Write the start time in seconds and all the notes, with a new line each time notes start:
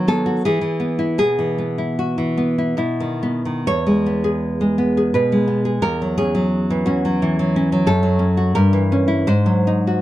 Already playing: D#3 F#3 F#4
0.08 B3 A4
0.26 F#4
0.45 E3 G#4
0.61 E3
0.80 B3
0.99 E4
1.18 B2 G#4
1.39 E3
1.58 B3
1.78 E4
1.99 F#4
2.18 E3
2.37 B3
2.58 E4
2.77 B2 E4
3.00 D#3
3.23 B3
3.45 D#3
3.67 E2 C#5
3.87 G#3
4.06 B3
4.24 G#4
4.61 G#3
4.78 B3
4.97 G#4
5.14 B2 B4
5.32 G#3
5.48 B3
5.65 G#4
5.82 E2 A#4
6.02 F#3
6.18 C#4 G#4
6.35 F#3
6.70 E3
6.86 C#4 F#4
7.05 F#3
7.22 E3
7.39 F#3
7.56 C#4
7.72 F#3
7.87 F#2 A4
8.03 F#3
8.19 C#4
8.37 F#4
8.55 G2 A#4
8.73 E3
8.92 C#4
9.08 E4
9.27 G#2 C5
9.46 F#3
9.67 D#4
9.87 F#4